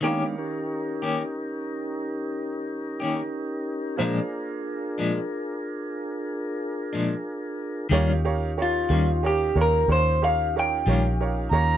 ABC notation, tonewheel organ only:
X:1
M:12/8
L:1/8
Q:3/8=61
K:Ebmix
V:1 name="Tonewheel organ"
[A,_C=DE] [_DEGB]8- [DEGB]3 | [=DFAB]12 | [DEFG]12 |]